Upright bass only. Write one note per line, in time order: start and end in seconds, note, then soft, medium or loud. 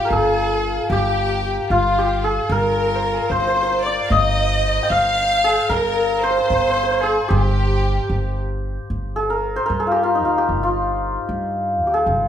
0.10 0.77 G1 medium
0.90 1.57 G1 loud
1.70 2.37 G1 medium
2.49 3.17 G1 loud
3.30 3.97 G1 medium
4.10 4.77 G1 loud
4.90 5.57 G1 medium
5.70 6.37 G1 loud
6.50 7.17 G1 medium
7.30 7.97 G1 loud
8.10 8.76 G1 medium
8.90 9.57 G1 medium
9.70 10.23 G2 medium
10.23 10.50 D2 medium
10.49 11.15 G1 medium
11.29 11.81 G2 medium
11.81 12.08 D2 medium
12.06 12.28 G1 medium